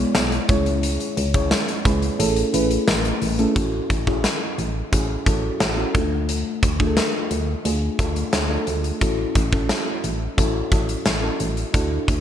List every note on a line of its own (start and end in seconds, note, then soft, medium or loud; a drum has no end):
0.00 0.49 G#3 medium
0.00 0.51 B3 medium
0.00 0.49 E4 medium
0.00 0.49 G#4 medium
0.00 0.51 B4 loud
0.00 0.34 C#5 loud
0.00 0.51 D5 medium
0.15 0.39 B1 loud
0.15 snare loud
0.15 tambourine medium
0.32 closed hi-hat medium
0.49 0.98 C#2 loud
0.49 1.17 G#3 medium
0.49 1.17 C#4 medium
0.49 1.17 E4 medium
0.49 1.17 G#4 medium
0.49 1.18 C#5 loud
0.49 kick loud
0.49 closed hi-hat medium
0.66 closed hi-hat soft
0.83 closed hi-hat medium
1.00 closed hi-hat soft
1.17 1.54 C#2 loud
1.17 closed hi-hat medium
1.34 1.65 G#3 medium
1.34 1.66 C#4 medium
1.34 1.66 E4 medium
1.34 1.66 G#4 medium
1.34 1.66 C#5 medium
1.34 kick loud
1.34 closed hi-hat medium
1.51 snare loud
1.51 tambourine medium
1.68 closed hi-hat medium
1.85 2.10 C#2 loud
1.85 2.19 G#3 medium
1.85 2.18 C#4 medium
1.85 2.18 E4 medium
1.85 2.19 G#4 medium
1.85 2.20 B4 medium
1.85 kick loud
1.85 closed hi-hat medium
2.02 closed hi-hat soft
2.19 2.44 A1 loud
2.19 2.47 A3 medium
2.19 2.47 C#4 medium
2.19 2.47 E4 medium
2.19 2.47 G#4 medium
2.19 2.47 A4 loud
2.19 closed hi-hat loud
2.36 closed hi-hat medium
2.53 2.78 A1 loud
2.53 3.06 A3 medium
2.53 3.06 C#4 medium
2.53 3.06 E4 medium
2.53 3.06 G#4 medium
2.53 3.06 B4 medium
2.53 closed hi-hat medium
2.71 closed hi-hat medium
2.88 3.12 A1 loud
2.88 snare loud
2.88 tambourine medium
3.05 closed hi-hat medium
3.22 3.46 A1 medium
3.22 open hi-hat medium
3.38 3.49 A3 medium
3.38 3.49 C#4 medium
3.38 3.49 E4 medium
3.38 3.50 G#4 medium
3.38 3.50 A4 loud
3.38 closed hi-hat soft
3.55 3.81 A1 loud
3.55 3.87 C#4 medium
3.55 3.87 E4 medium
3.55 3.88 F#4 medium
3.55 3.88 A4 medium
3.55 kick loud
3.55 closed hi-hat medium
3.90 4.27 A1 loud
3.90 kick medium
3.90 closed hi-hat medium
4.07 4.59 C#4 medium
4.07 4.60 E4 medium
4.07 4.60 F#4 medium
4.07 4.60 G#4 medium
4.07 kick medium
4.24 snare loud
4.24 closed hi-hat medium
4.58 4.83 A1 loud
4.58 closed hi-hat medium
4.92 5.17 A1 loud
4.92 5.13 C#4 medium
4.92 5.13 E4 medium
4.92 5.14 F#4 medium
4.92 5.14 G#4 medium
4.92 kick medium
4.92 closed hi-hat loud
5.26 5.51 A1 loud
5.26 5.58 C#4 medium
5.26 5.58 E4 medium
5.26 5.58 F#4 medium
5.26 5.58 A4 medium
5.26 kick medium
5.26 closed hi-hat medium
5.60 5.85 A1 loud
5.60 snare loud
5.60 closed hi-hat medium
5.77 5.94 C#4 medium
5.77 5.95 E4 medium
5.77 5.95 F#4 medium
5.77 5.94 A4 medium
5.94 6.44 D2 loud
5.94 6.63 A3 medium
5.94 6.63 D4 medium
5.94 6.63 F4 medium
5.94 6.63 A4 medium
5.94 kick loud
5.94 closed hi-hat medium
6.29 closed hi-hat medium
6.63 7.00 D2 loud
6.63 kick medium
6.63 closed hi-hat medium
6.79 7.32 A3 medium
6.79 7.32 D4 medium
6.79 7.32 F4 medium
6.79 6.87 G#4 medium
6.79 kick medium
6.87 7.36 A4 medium
6.97 snare loud
6.97 closed hi-hat medium
7.31 7.55 D2 loud
7.31 closed hi-hat medium
7.65 7.90 D2 loud
7.65 7.86 A3 medium
7.65 7.86 D4 medium
7.65 7.86 F4 medium
7.65 7.86 G#4 medium
7.65 closed hi-hat loud
7.99 8.24 D2 medium
7.99 8.30 A3 medium
7.99 8.31 D4 medium
7.99 8.31 F4 medium
7.99 8.31 A4 medium
7.99 kick medium
7.99 closed hi-hat medium
8.16 closed hi-hat medium
8.33 8.58 D2 medium
8.33 snare loud
8.33 closed hi-hat medium
8.50 8.81 A3 medium
8.50 8.82 D4 medium
8.50 8.82 F4 medium
8.50 8.82 A4 medium
8.67 8.92 D2 medium
8.67 closed hi-hat medium
8.84 closed hi-hat soft
9.01 9.26 A1 loud
9.01 9.33 C#4 medium
9.01 9.33 E4 medium
9.01 9.33 F#4 medium
9.01 9.33 A4 medium
9.01 kick loud
9.01 closed hi-hat medium
9.35 9.72 A1 loud
9.35 kick medium
9.35 closed hi-hat medium
9.52 10.05 C#4 medium
9.52 10.05 E4 medium
9.52 10.05 F#4 medium
9.52 10.05 A4 medium
9.52 kick medium
9.69 snare loud
9.69 closed hi-hat medium
10.04 10.28 A1 loud
10.04 closed hi-hat medium
10.37 10.62 A1 loud
10.37 10.58 C#4 medium
10.37 10.59 E4 medium
10.37 10.59 F#4 medium
10.37 10.59 A4 medium
10.37 kick medium
10.37 closed hi-hat loud
10.71 10.96 A1 medium
10.71 11.03 C#4 medium
10.71 11.03 E4 medium
10.71 11.03 F#4 medium
10.71 11.04 A4 medium
10.71 kick medium
10.71 closed hi-hat medium
10.89 closed hi-hat medium
11.06 11.31 A1 loud
11.06 snare loud
11.06 closed hi-hat medium
11.22 11.54 C#4 medium
11.22 11.54 E4 medium
11.22 11.55 F#4 medium
11.22 11.55 A4 medium
11.40 11.65 A1 loud
11.40 closed hi-hat medium
11.57 closed hi-hat soft
11.73 11.99 D2 loud
11.73 12.05 D4 medium
11.73 12.05 E4 medium
11.73 12.06 F#4 medium
11.73 12.06 A4 medium
11.73 kick loud
11.73 closed hi-hat medium
12.08 12.21 D2 loud
12.08 kick medium
12.08 closed hi-hat medium